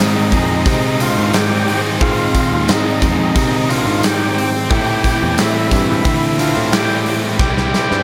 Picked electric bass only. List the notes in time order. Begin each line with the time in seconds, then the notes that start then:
0.00 G#2
0.32 F2
0.51 F2
0.66 C3
1.18 G#2
2.02 G#2
2.52 D#2
2.69 G#2
3.03 F2
3.19 F2
3.36 C3
3.87 G#2
4.71 A2
5.23 E2
5.41 A2
5.72 G2
5.91 G2
6.06 D3
6.57 A2
7.39 C2
7.92 G2